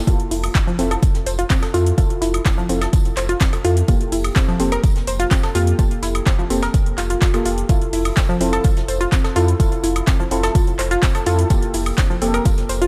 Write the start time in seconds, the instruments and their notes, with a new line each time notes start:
0.07 analog synth bass F1, synth stab E4 F4 A4, synth arpeggio sound F4, kick, closed hi-hat, tambourine, cabasa
0.20 closed hi-hat, cabasa
0.31 analog synth bass F1, synth arpeggio sound E4, open hi-hat
0.44 closed hi-hat, cabasa, high woodblock
0.55 analog synth bass F1, synth arpeggio sound C4, kick, snare, clap, closed hi-hat, tambourine, cabasa
0.67 synth arpeggio sound F3, cabasa
0.79 analog synth bass F1, synth arpeggio sound C4, synth stab E4 F4 A4, open hi-hat, tambourine
0.91 synth arpeggio sound A4, closed hi-hat, cabasa, high woodblock
1.02 analog synth bass F1, kick, closed hi-hat, tambourine, cabasa
1.15 snare, closed hi-hat, cabasa
1.26 analog synth bass F1, synth arpeggio sound C5, open hi-hat, tambourine
1.39 synth arpeggio sound F4, closed hi-hat, cabasa
1.50 analog synth bass F1, synth arpeggio sound C4, kick, snare, clap, closed hi-hat, tambourine, cabasa
1.63 synth arpeggio sound A4, snare, closed hi-hat, cabasa, high woodblock
1.74 analog synth bass F2, synth stab E4 F4 A4, synth arpeggio sound F4, open hi-hat, tambourine
1.86 closed hi-hat, cabasa
1.98 analog synth bass F1, synth stab E4 F4 A4, synth arpeggio sound F4, kick, closed hi-hat, tambourine, cabasa
2.10 closed hi-hat, cabasa
2.22 analog synth bass F1, synth arpeggio sound E4, snare, open hi-hat, tambourine
2.34 closed hi-hat, cabasa, high woodblock
2.45 analog synth bass F1, synth arpeggio sound C4, kick, snare, clap, closed hi-hat, tambourine, cabasa
2.58 synth arpeggio sound F3, cabasa
2.69 analog synth bass F1, synth arpeggio sound C4, synth stab E4 F4 A4, open hi-hat, tambourine
2.81 synth arpeggio sound A4, snare, closed hi-hat, cabasa, high woodblock
2.93 analog synth bass F1, kick, closed hi-hat, tambourine, cabasa
3.05 closed hi-hat, cabasa
3.17 analog synth bass F1, synth arpeggio sound C5, clap, open hi-hat, tambourine
3.29 synth arpeggio sound F4, closed hi-hat, cabasa
3.40 analog synth bass F1, synth arpeggio sound C4, kick, snare, clap, closed hi-hat, tambourine, cabasa
3.53 synth arpeggio sound A4, closed hi-hat, cabasa, high woodblock
3.65 analog synth bass F2, synth stab E4 F4 A4, synth arpeggio sound F4, open hi-hat, tambourine
3.77 closed hi-hat, cabasa
3.88 analog synth bass F1, synth stab A#3 G4 A4, synth arpeggio sound F4, kick, closed hi-hat, tambourine, cabasa
4.01 closed hi-hat, cabasa
4.12 analog synth bass F1, synth arpeggio sound E4, open hi-hat
4.24 closed hi-hat, cabasa, high woodblock
4.36 analog synth bass F1, synth arpeggio sound C4, kick, snare, clap, closed hi-hat, tambourine, cabasa
4.48 synth arpeggio sound F3, cabasa
4.60 analog synth bass F1, synth stab A#3 G4 A4, synth arpeggio sound C4, open hi-hat, tambourine
4.72 synth arpeggio sound A#4, closed hi-hat, cabasa, high woodblock
4.84 analog synth bass F1, kick, closed hi-hat, tambourine, cabasa
4.96 snare, closed hi-hat, cabasa
5.07 analog synth bass F1, synth arpeggio sound C5, open hi-hat, tambourine
5.20 synth arpeggio sound F4, closed hi-hat, cabasa
5.31 analog synth bass F1, synth arpeggio sound C4, kick, snare, clap, closed hi-hat, tambourine, cabasa
5.43 synth arpeggio sound A4, snare, closed hi-hat, cabasa, high woodblock
5.55 analog synth bass F2, synth stab A#3 G4 A4, synth arpeggio sound F4, open hi-hat, tambourine
5.67 closed hi-hat, cabasa
5.79 analog synth bass F1, synth stab A#3 G4 A4, synth arpeggio sound F4, kick, closed hi-hat, tambourine, cabasa
5.91 closed hi-hat, cabasa
6.02 analog synth bass F1, synth arpeggio sound E4, snare, open hi-hat, tambourine
6.15 closed hi-hat, cabasa, high woodblock
6.26 analog synth bass F1, synth arpeggio sound C4, kick, snare, clap, closed hi-hat, tambourine, cabasa
6.39 synth arpeggio sound F3, cabasa
6.50 analog synth bass F1, synth stab A#3 G4 A4, synth arpeggio sound C4, open hi-hat, tambourine
6.62 synth arpeggio sound A#4, snare, closed hi-hat, cabasa, high woodblock
6.74 analog synth bass F1, kick, closed hi-hat, tambourine, cabasa
6.86 closed hi-hat, cabasa
6.98 analog synth bass F1, synth arpeggio sound F4, clap, open hi-hat, tambourine
7.10 synth arpeggio sound F4, closed hi-hat, cabasa
7.22 analog synth bass F1, synth arpeggio sound F4, kick, snare, clap, closed hi-hat, tambourine, cabasa
7.34 synth stab A#3 G4 A4, synth arpeggio sound F4, closed hi-hat, cabasa, high woodblock
7.45 analog synth bass F1, synth arpeggio sound F4, open hi-hat, tambourine
7.58 closed hi-hat, cabasa
7.69 analog synth bass F1, synth stab E4 F4 A4, synth arpeggio sound F4, kick, closed hi-hat, tambourine, cabasa
7.82 closed hi-hat, cabasa
7.93 analog synth bass F1, synth arpeggio sound E4, open hi-hat
8.05 closed hi-hat, cabasa, high woodblock
8.16 analog synth bass F1, synth arpeggio sound C4, kick, snare, clap, closed hi-hat, tambourine, cabasa
8.29 synth arpeggio sound F3, cabasa
8.40 analog synth bass F1, synth arpeggio sound C4, synth stab E4 F4 A4, open hi-hat, tambourine
8.53 synth arpeggio sound A4, closed hi-hat, cabasa, high woodblock
8.64 analog synth bass F1, synth arpeggio sound F4, kick, closed hi-hat, tambourine, cabasa
8.77 snare, closed hi-hat, cabasa
8.88 analog synth bass F1, synth arpeggio sound C5, open hi-hat, tambourine
9.01 synth arpeggio sound F4, closed hi-hat, cabasa
9.12 analog synth bass F1, synth arpeggio sound C4, kick, snare, clap, closed hi-hat, tambourine, cabasa
9.24 synth arpeggio sound A4, snare, closed hi-hat, cabasa, high woodblock
9.36 analog synth bass F2, synth stab E4 F4 A4, synth arpeggio sound F4, open hi-hat, tambourine
9.48 closed hi-hat, cabasa
9.60 analog synth bass F1, synth stab E4 F4 A4, synth arpeggio sound F4, kick, closed hi-hat, tambourine, cabasa
9.72 closed hi-hat, cabasa
9.83 analog synth bass F1, synth arpeggio sound E4, snare, open hi-hat, tambourine
9.96 closed hi-hat, cabasa, high woodblock
10.07 analog synth bass F1, synth arpeggio sound C4, kick, snare, clap, closed hi-hat, tambourine, cabasa
10.20 synth arpeggio sound F3, cabasa
10.31 analog synth bass F1, synth arpeggio sound C4, synth stab E4 F4 A4, open hi-hat, tambourine
10.43 synth arpeggio sound A4, snare, closed hi-hat, cabasa, high woodblock
10.55 analog synth bass F1, synth arpeggio sound F4, kick, closed hi-hat, tambourine, cabasa
10.67 closed hi-hat, cabasa
10.79 analog synth bass F1, synth arpeggio sound C5, clap, open hi-hat, tambourine
10.91 synth arpeggio sound F4, closed hi-hat, cabasa
11.03 analog synth bass F1, synth arpeggio sound C4, kick, snare, clap, closed hi-hat, tambourine, cabasa
11.15 synth arpeggio sound A4, closed hi-hat, cabasa, high woodblock
11.26 analog synth bass F2, synth stab E4 F4 A4, synth arpeggio sound F4, open hi-hat, tambourine
11.39 closed hi-hat, cabasa
11.50 analog synth bass F1, synth stab A#3 G4 A4, synth arpeggio sound F4, kick, closed hi-hat, tambourine, cabasa
11.62 closed hi-hat, cabasa
11.73 analog synth bass F1, synth arpeggio sound E4, open hi-hat
11.86 closed hi-hat, cabasa, high woodblock
11.98 analog synth bass F1, synth arpeggio sound C4, kick, snare, clap, closed hi-hat, tambourine, cabasa
12.10 synth arpeggio sound F3, cabasa
12.22 analog synth bass F1, synth stab A#3 G4 A4, synth arpeggio sound C4, open hi-hat, tambourine
12.34 synth arpeggio sound A#4, closed hi-hat, cabasa, high woodblock
12.45 analog synth bass F1, synth arpeggio sound F4, kick, closed hi-hat, tambourine, cabasa
12.58 snare, closed hi-hat, cabasa
12.69 analog synth bass F1, synth arpeggio sound C5, open hi-hat, tambourine
12.82 synth arpeggio sound F4, closed hi-hat, cabasa